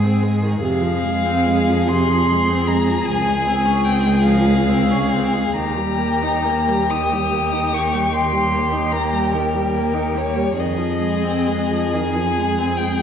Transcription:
Already playing: G#2 G#4
0.04 C4
0.23 G#3
0.42 D#3
0.61 F2 C3 G#4 F5
0.82 F3
1.03 G#3
1.25 C4
1.46 G#3
1.70 F3
1.88 C3 C6
2.10 F3
2.30 G#3
2.49 C4
2.67 G#3 A#5
2.87 F3
3.06 C#2 F3 G#5
3.26 G#3
3.47 C4
3.65 C#4
3.84 C4 G5
4.06 G#3
4.25 F3 F5
4.47 G#3
4.69 C4
4.91 C#4
5.12 C4
5.34 G#3
5.56 D#2 D#3 G4 A#5
5.77 G3
5.98 A#3
6.22 D#4
6.45 A#3
6.68 G3
6.90 D#3 D#6
7.12 G3
7.33 A#3
7.52 D#4
7.73 A#3 C#6
7.93 G3
8.13 D#3 C6
8.33 G3
8.52 A#3
8.72 D#4
8.92 A#3 A#5
9.13 G3
9.34 D#3 A#4
9.54 G3
9.74 A#3
9.94 D#4
10.15 A#3 C#5
10.36 G3
10.56 F2 D#3 D#5
10.61 G#4
10.78 F3
11.00 G#3
11.24 C4
11.47 G#3
11.71 F3
11.93 D#3 G#5
12.15 F3
12.38 G#3
12.58 C4
12.77 G#3 G5

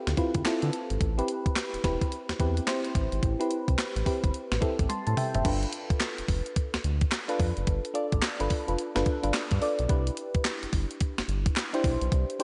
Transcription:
Already playing: C4 E4 F4 G4 A4 B4
0.07 D2, snare, closed hi-hat
0.17 C4 E4 F4 B4, kick, closed hi-hat
0.34 D2, kick, closed hi-hat
0.45 C4 E4 F4 A4, snare, clap, closed hi-hat
0.62 D3, closed hi-hat
0.73 closed hi-hat
0.90 G#1, closed hi-hat
1.01 A1, kick, closed hi-hat
1.18 C4 E4 G4 B4, closed hi-hat
1.28 closed hi-hat
1.46 E1, kick, closed hi-hat
1.56 snare, clap, closed hi-hat
1.74 E1, closed hi-hat
1.84 E1 C4 E4 G4 B4, kick, snare, closed hi-hat
2.01 kick, closed hi-hat
2.12 closed hi-hat
2.29 E2, snare, closed hi-hat
2.39 E2 C4 E4 G4 B4, kick, closed hi-hat
2.57 closed hi-hat
2.67 C4 E4 G4 C5, snare, clap, closed hi-hat
2.85 closed hi-hat
2.95 A1, kick, closed hi-hat
3.12 G#1, closed hi-hat
3.23 A1, kick, closed hi-hat
3.40 C4 E4 G4 B4, closed hi-hat
3.51 closed hi-hat
3.68 C2, kick, closed hi-hat
3.78 snare, clap, closed hi-hat
3.96 A1, closed hi-hat
4.05 C4 E4 G4 B4, kick, open hi-hat
4.24 G1, kick, closed hi-hat
4.34 closed hi-hat
4.52 A1, snare, closed hi-hat
4.61 C4 E4 G4 A4, kick, closed hi-hat
4.79 A1, kick, closed hi-hat
4.89 A5 C6, closed hi-hat, high tom
5.07 A2 A5, closed hi-hat
5.17 E5 G5, mid tom, open hi-hat
5.35 F#1 C5 E5, closed hi-hat, floor tom
5.44 G1 D4 F4 A4 B4, kick, closed hi-hat, crash
5.63 closed hi-hat
5.73 closed hi-hat
5.90 F1, kick, closed hi-hat
6.00 snare, clap, closed hi-hat
6.18 F1, closed hi-hat
6.28 F1, kick, open hi-hat
6.46 closed hi-hat
6.56 kick, closed hi-hat
6.74 D2, snare, closed hi-hat
6.84 D2, closed hi-hat
7.01 kick, closed hi-hat
7.11 snare, clap, closed hi-hat
7.28 D4 F4 A4 B4, closed hi-hat
7.40 F2, kick, open hi-hat
7.57 F#1, closed hi-hat
7.67 G1, kick, closed hi-hat
7.85 closed hi-hat
7.94 D4 F4 A4 D5, closed hi-hat
8.12 A1, kick, closed hi-hat
8.22 snare, clap, closed hi-hat
8.40 G1 D4 F4 A4 B4, closed hi-hat
8.50 kick, open hi-hat
8.67 F1 D4 F4 A4 B4, closed hi-hat
8.79 closed hi-hat
8.95 G1 D4 F4 A4 B4, snare, closed hi-hat
9.06 kick, closed hi-hat
9.23 G1 D4 F4 A4 B4, closed hi-hat
9.34 snare, clap, closed hi-hat
9.51 G2, kick, closed hi-hat
9.61 D4 F4 A4 D5, open hi-hat
9.79 B1, closed hi-hat
9.88 C2 D4 E4 G4 B4, kick, closed hi-hat
10.07 closed hi-hat
10.17 closed hi-hat
10.35 G1, kick, closed hi-hat
10.45 snare, clap, closed hi-hat
10.63 G1, closed hi-hat
10.73 G1, kick, open hi-hat
10.91 closed hi-hat
11.01 kick, closed hi-hat
11.18 G1, snare, closed hi-hat
11.28 G1, closed hi-hat
11.46 kick, closed hi-hat
11.56 snare, clap, closed hi-hat
11.73 D4 E4 G4 C5, closed hi-hat
11.84 B1, kick, open hi-hat
12.02 B1, closed hi-hat
12.12 C2, kick, closed hi-hat
12.30 closed hi-hat
12.39 D4 E4, closed hi-hat

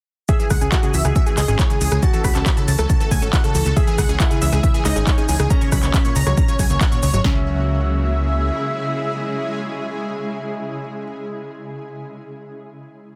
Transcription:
0.29 C#3 E3 G#3 C#4 G#4 E5 E6, kick, closed hi-hat, shaker
0.39 E3 G#4 G#5, closed hi-hat, shaker
0.50 C#2 G#3 F#5 F#6, kick, cross-stick, open hi-hat, shaker
0.61 C#2 C#4 G#4 G#5, closed hi-hat, shaker
0.72 E4 F#4 F#5 F#6, kick, clap, closed hi-hat, shaker
0.83 C#3 G#4 G#5, closed hi-hat, shaker
0.94 C#2 E3 E5 E6, open hi-hat, shaker
1.05 C#2 G#3 G#4 G#5, cross-stick, closed hi-hat, shaker
1.16 C#3 E5 E6, kick, closed hi-hat, shaker
1.26 E3 G#4 G#5, closed hi-hat, shaker
1.37 C#2 G#3 G#4 D#5 D#6, cross-stick, clap, open hi-hat, shaker
1.48 G#1 C#4 G#4 G#5, closed hi-hat, shaker
1.59 E4 C#5 C#6, kick, clap, closed hi-hat, shaker
1.70 C#3 G#4 G#5, closed hi-hat, shaker
1.81 C#2 E3 G#4 G#5, open hi-hat, shaker
1.92 C#2 G#3 G#4 G#5, cross-stick, closed hi-hat, shaker
2.02 C#3 A3 F#4 A5 A6, kick, closed hi-hat, shaker
2.13 E3 A4 A5, closed hi-hat, shaker
2.24 C#2 A3 B5 B6, kick, cross-stick, open hi-hat, shaker
2.35 C#2 C#4 A4 A5, clap, closed hi-hat, shaker
2.46 E4 B5 B6, kick, clap, closed hi-hat, shaker
2.57 C#3 A4 A5, closed hi-hat, shaker
2.68 C#2 E3 A5 A6, open hi-hat, shaker
2.79 C#2 A3 A4 A5, cross-stick, closed hi-hat, shaker
2.89 C#3 A5 A6, kick, closed hi-hat, shaker
3.00 E3 A4 A5, closed hi-hat, shaker
3.11 C#2 A3 G#5 G#6, kick, open hi-hat, shaker
3.22 G#1 C#4 A4 A5, closed hi-hat, shaker
3.33 E4 F#5 F#6, kick, clap, closed hi-hat, shaker
3.44 C#3 A4 A5, closed hi-hat, shaker
3.55 C#2 E3 A4 A5, open hi-hat, shaker
3.65 C#2 A3 A4 A5, closed hi-hat, shaker
3.76 C#3 G#3 G#4 E5 E6, kick, closed hi-hat, shaker
3.87 E3 G#4 G#5, closed hi-hat, shaker
3.98 C#2 G#3 F#5 F#6, kick, cross-stick, open hi-hat, shaker
4.09 C#2 C#4 G#4 G#5, closed hi-hat, shaker
4.20 E4 F#5 F#6, kick, clap, closed hi-hat, shaker
4.31 C#3 G#4 G#5, closed hi-hat, shaker
4.41 C#2 E3 E5 E6, open hi-hat, shaker
4.52 C#2 G#3 G#4 G#5, cross-stick, closed hi-hat, shaker
4.63 C#3 E5 E6, kick, closed hi-hat, shaker
4.74 E3 G#4 G#5, closed hi-hat, shaker
4.85 C#2 G#3 D#4 D#5 D#6, cross-stick, clap, open hi-hat, shaker
4.96 G#1 C#4 G#4 G#5, closed hi-hat, shaker
5.07 E4 C#5 C#6, kick, clap, closed hi-hat, shaker
5.18 C#3 G#4 G#5, closed hi-hat, shaker
5.29 C#2 E3 G#4 G#5, open hi-hat, shaker
5.39 C#2 G#3 G#4 G#5, cross-stick, closed hi-hat, shaker
5.50 A#2 F#3 A#3 C#4 F#4 A#5 A#6, kick, closed hi-hat, shaker
5.61 C#3 C#5 C#6, closed hi-hat, shaker
5.72 C#2 F#3 B5 B6, kick, cross-stick, open hi-hat, shaker
5.83 C#2 A#3 C#5 C#6, clap, closed hi-hat, shaker
5.94 C#4 B5 B6, kick, clap, closed hi-hat, shaker
6.05 A#2 C#5 C#6, closed hi-hat, shaker
6.16 C#2 C#3 A#5 A#6, open hi-hat, shaker
6.27 C#2 F#3 C#5 C#6, cross-stick, shaker
6.37 A#2 A#5 A#6, kick, closed hi-hat, shaker
6.48 C#3 C#5 C#6, closed hi-hat, shaker
6.59 C#2 F#3 G#5 G#6, kick, open hi-hat, shaker
6.70 C#2 A#3 C#5 C#6, closed hi-hat, shaker
6.81 C#4 F#5 F#6, kick, clap, closed hi-hat, shaker
6.92 A#2 C#5 C#6, closed hi-hat, shaker
7.03 C#2 C#3 C#5 C#6, open hi-hat, shaker
7.13 G#1 F#3 C#5 C#6, closed hi-hat, shaker
7.24 C#2 C#3 G#3 C#4 E4 G#4 E5, kick, snare

